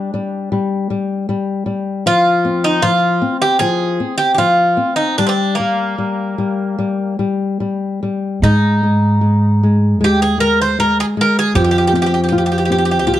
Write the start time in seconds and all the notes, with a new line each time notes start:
Already playing: G3 D4
0.14 G3
0.52 G3
0.90 G3
1.29 G3
1.66 G3
2.06 F3 F4
2.45 C4
2.64 D#4
2.82 F3 F4
3.22 C4
3.42 G4
3.59 F3 G#4
4.00 C4
4.18 G4
4.34 F3 F4 G4
4.77 C4
4.96 D#4
5.18 G3 D4
5.27 C4 D4
5.55 A#3
5.59 G3
5.98 G3
6.38 G3
6.79 G3
7.19 G3
7.60 G3
8.03 G3
8.42 G#2 G#3 D#4
8.83 G#3
9.21 G#3
9.63 G#3
10.01 D#2 G#3 G4
10.22 G#4
10.38 G#3 A#4
10.61 C5
10.79 G#3 A#4
11.00 G#4
11.17 G#3
11.21 A#4
11.39 G#4
11.55 F2 F3 G4
11.64 G4
11.71 G4
11.78 G4
11.87 G4
11.93 C4 G4
12.02 G4
12.06 G4
12.14 G4
12.24 G4
12.29 F4 G4
12.38 G4
12.46 G4
12.52 G4
12.58 G4
12.65 G4
12.70 C4 G4
12.78 G4
12.85 G4
12.91 G4
12.99 G4
13.06 C2 F4 G4
13.14 G4